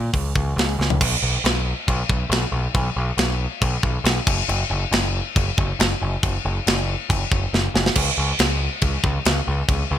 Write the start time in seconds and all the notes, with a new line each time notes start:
0.13 C#2, kick, open hi-hat
0.35 C#2, kick
0.56 C#2, snare, open hi-hat
0.79 C#2, snare
0.90 floor tom
1.01 B1, kick, crash
1.22 B1
1.44 B1, snare, crash
1.88 B1, kick, crash
2.09 B1, kick
2.29 B1, snare, crash
2.52 B1
2.74 B1, kick, crash
2.96 B1
3.17 B1, snare, crash
3.62 B1, kick, crash
3.83 B1, kick
4.04 B1, snare, crash
4.27 F#1, kick, crash
4.48 F#1, crash
4.70 F#1
4.92 F#1, snare, crash
5.36 F#1, kick, crash
5.58 F#1, kick
5.79 F#1, snare, crash
6.02 F#1
6.23 F#1, kick, crash
6.45 F#1
6.67 F#1, snare, crash
7.10 F#1, kick, crash
7.31 F#1, kick
7.53 F#1, snare
7.74 F#1, snare
7.86 snare
7.95 C#2, kick, crash
8.18 C#2
8.39 C#2, snare, crash
8.82 C#2, kick, crash
9.04 C#2, kick
9.25 C#2, snare, crash
9.47 C#2
9.68 C#2, kick, crash
9.91 C#2